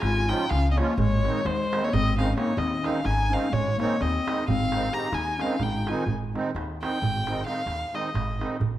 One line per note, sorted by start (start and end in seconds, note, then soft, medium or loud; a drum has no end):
0.01 0.31 G#1 medium
0.01 0.31 F4 medium
0.01 0.30 G#5 loud
0.01 darbuka tek medium
0.16 darbuka tek soft
0.28 0.45 F3 medium
0.28 0.45 G#3 medium
0.28 0.45 C#4 medium
0.28 0.53 D#4 medium
0.28 0.46 F4 medium
0.28 0.51 G5 medium
0.28 darbuka tek medium
0.50 0.79 C#2 loud
0.50 0.70 C#4 medium
0.50 0.70 F5 loud
0.50 darbuka tek medium
0.71 0.79 C4 medium
0.71 0.78 D#5 medium
0.77 0.93 F3 medium
0.77 0.93 G#3 medium
0.77 0.98 A#3 medium
0.77 0.93 C#4 medium
0.77 0.94 F4 medium
0.77 0.98 C#5 medium
0.77 darbuka tek medium
0.88 darbuka tek soft
0.98 1.26 G#1 loud
0.98 1.45 G#3 medium
0.98 1.48 C#5 loud
0.98 darbuka dum medium
1.25 1.41 D#3 medium
1.25 1.41 G#3 medium
1.25 1.41 C4 medium
1.25 1.42 D#4 medium
1.25 darbuka tek medium
1.45 1.61 D#2 loud
1.45 1.84 G#3 medium
1.45 1.86 C5 loud
1.45 darbuka tek medium
1.73 1.89 D#3 medium
1.73 1.89 G#3 medium
1.73 1.89 C4 medium
1.73 1.90 D#4 medium
1.73 darbuka tek medium
1.83 1.94 A#3 medium
1.83 1.95 C#5 medium
1.83 darbuka tek soft
1.92 2.32 G#1 loud
1.92 2.16 C4 medium
1.92 2.18 D#5 loud
1.92 darbuka dum medium
2.06 darbuka tek soft
2.17 2.33 D#3 medium
2.17 2.33 G#3 medium
2.17 2.34 C4 medium
2.17 2.36 C#4 medium
2.17 2.33 D#4 medium
2.17 2.37 F5 medium
2.17 darbuka tek medium
2.29 darbuka tek soft
2.36 2.52 D#3 medium
2.36 2.52 G#3 soft
2.36 2.57 A#3 medium
2.36 2.53 C4 medium
2.36 2.53 D#4 medium
2.36 2.59 C#5 medium
2.36 darbuka tek medium
2.48 darbuka tek soft
2.56 2.86 D#2 loud
2.56 2.84 C4 medium
2.56 2.87 D#5 medium
2.56 darbuka tek medium
2.72 darbuka tek soft
2.83 3.00 D#3 medium
2.83 3.00 G#3 medium
2.83 3.00 C4 medium
2.83 3.05 C#4 medium
2.83 3.01 D#4 medium
2.83 3.07 F5 medium
2.83 darbuka tek medium
3.03 3.34 G#1 medium
3.03 3.31 D#4 medium
3.03 3.34 G#5 loud
3.03 darbuka tek medium
3.30 3.47 D#3 medium
3.30 3.48 G#3 medium
3.30 3.48 C4 medium
3.30 3.52 C#4 medium
3.30 3.48 D#4 medium
3.30 3.54 F5 medium
3.43 darbuka tek soft
3.50 3.82 G#1 medium
3.50 3.76 G#3 medium
3.50 3.80 C#5 medium
3.50 darbuka dum medium
3.77 3.96 D#3 medium
3.77 3.96 G#3 medium
3.77 4.02 A#3 medium
3.77 3.96 C4 medium
3.77 darbuka tek medium
3.81 3.97 D#4 medium
3.81 4.03 C#5 medium
3.91 darbuka tek soft
4.01 4.17 D#2 medium
4.01 4.34 C4 medium
4.01 4.48 D#5 medium
4.01 darbuka tek medium
4.14 darbuka tek soft
4.28 4.44 D#3 medium
4.28 4.44 G#3 medium
4.28 4.44 C4 soft
4.28 4.44 D#4 medium
4.28 darbuka tek medium
4.48 4.88 G#1 medium
4.48 4.95 C4 medium
4.48 4.95 F5 loud
4.48 darbuka dum medium
4.60 darbuka tek soft
4.72 4.88 D#3 medium
4.72 4.88 G#3 medium
4.72 4.89 C4 medium
4.72 4.89 D#4 medium
4.72 darbuka tek medium
4.83 darbuka tek soft
4.93 5.08 D#3 medium
4.93 5.08 G#3 medium
4.93 5.09 C4 medium
4.93 5.09 D#4 medium
4.93 5.14 G4 medium
4.93 5.16 A#5 medium
4.93 darbuka tek medium
5.12 5.41 D#2 medium
5.12 5.40 D#4 medium
5.12 5.42 G#5 medium
5.12 darbuka tek medium
5.38 5.55 D#3 medium
5.38 5.56 G#3 medium
5.38 5.56 C4 medium
5.38 5.62 C#4 medium
5.38 5.57 D#4 medium
5.38 5.64 F5 medium
5.38 darbuka tek medium
5.51 darbuka tek soft
5.59 5.89 G#1 medium
5.59 5.91 D#4 medium
5.59 5.90 G5 medium
5.59 darbuka tek medium
5.59 darbuka dum medium
5.74 darbuka tek soft
5.87 6.03 D#3 medium
5.87 6.03 G#3 medium
5.87 6.04 C4 medium
5.87 6.04 D#4 medium
5.87 6.09 F4 medium
5.87 6.09 G#5 medium
5.87 darbuka tek medium
5.98 darbuka tek soft
6.06 6.35 G#1 medium
6.06 darbuka dum medium
6.22 darbuka tek soft
6.34 6.50 D#3 medium
6.34 6.51 G#3 medium
6.34 6.51 C4 medium
6.34 6.51 D#4 medium
6.34 darbuka tek medium
6.55 6.83 D#2 medium
6.55 darbuka tek medium
6.82 6.98 D#3 medium
6.82 6.98 G#3 soft
6.82 6.98 C4 soft
6.82 6.98 D#4 medium
6.82 7.43 G5 medium
6.82 darbuka tek medium
7.02 7.41 G#1 medium
7.02 darbuka dum medium
7.16 darbuka tek soft
7.27 7.42 D#3 medium
7.27 7.42 G#3 medium
7.27 7.43 C4 medium
7.27 7.43 D#4 medium
7.27 darbuka tek medium
7.46 7.62 D#3 medium
7.46 7.62 G#3 soft
7.46 7.62 C4 soft
7.46 7.62 D#4 medium
7.46 7.96 F5 loud
7.46 darbuka tek medium
7.66 7.82 D#2 medium
7.66 darbuka tek medium
7.93 8.09 D#3 medium
7.93 8.09 G#3 medium
7.93 8.09 C4 soft
7.93 8.10 D#4 medium
7.93 8.41 D#5 medium
7.93 darbuka tek medium
8.14 8.43 G#1 medium
8.14 darbuka tek medium
8.14 darbuka dum medium
8.29 darbuka tek soft
8.39 8.56 D#3 medium
8.39 8.56 G#3 medium
8.39 8.57 C4 medium
8.39 8.57 D#4 medium
8.39 darbuka tek medium
8.52 darbuka tek soft
8.60 8.78 A#1 medium
8.60 darbuka dum medium